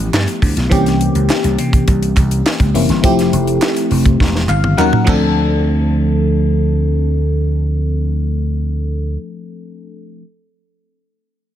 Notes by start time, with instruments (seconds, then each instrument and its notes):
Already playing: fm electric piano F3 A3 B3 E4 G4
0.13 slap bass G2, snare, clap
0.28 closed hi-hat
0.42 slap bass D2, kick, open hi-hat
0.57 slap bass B1, snare, closed hi-hat
0.69 slap bass C2, fm electric piano E3 A#3 C4 C#4 G4, kick, closed hi-hat
0.86 snare, closed hi-hat
1.01 closed hi-hat
1.15 slap bass C#2, closed hi-hat
1.29 snare, clap
1.44 slap bass C2, closed hi-hat
1.58 slap bass C3, closed hi-hat
1.73 kick, closed hi-hat
1.88 slap bass C2, kick, closed hi-hat
2.03 closed hi-hat
2.17 slap bass C2, kick, clap, closed hi-hat
2.31 closed hi-hat
2.46 snare, clap
2.60 slap bass C#2, kick, closed hi-hat
2.74 slap bass F1, fm electric piano E3 A#3 C4 C#4 E4, open hi-hat
2.89 slap bass G1, snare, closed hi-hat
3.03 slap bass F1, fm electric piano F3 A3 C4 E4 G4, kick, closed hi-hat
3.19 snare, closed hi-hat
3.33 slap bass F1, closed hi-hat
3.47 closed hi-hat
3.62 snare, clap
3.77 closed hi-hat
3.91 slap bass F1, open hi-hat
4.06 kick, closed hi-hat
4.20 slap bass E1, kick, snare
4.35 snare
4.49 slap bass G1, fm electric piano F5, clap
4.64 high tom
4.77 slap bass D#2, fm electric piano F#3 A#3 C#4 D#4 A#4 F#5, clap
4.93 mid tom
5.04 slap bass D2, fm electric piano F3 A3 C4 D4, kick, clap, crash
5.09 fm electric piano A4